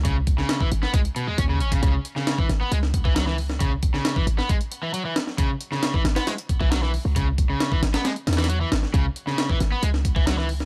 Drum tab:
HH |x---x---x---x---x-x-x---x---x-x-|x---x---x---x---x---x---x---o---|x---x---x---x---x-x-x---x---x---|x---x---x---x-x-x-x-x---x---o---|
SD |------o-o-----o-----------------|------o-o---o-----o-----o-o---o-|------o-o-----o-------------o-o-|------o-o---o-o-o-------o-o-----|
BD |o---o-----o-----o-------o-----o-|o---------o---------o-o---------|o---o-----o-----o---------------|o---------o---------o-o---------|

HH |x---x---x---x-x-x-x-xxxxx---x---|x---x---x---x---x---x---x---o---|
SD |--------o---o-o-o---oooo----o-o-|------o-o---o-----o-----o-o---o-|
BD |o---o-----o---------------------|o---------o---------o-o---------|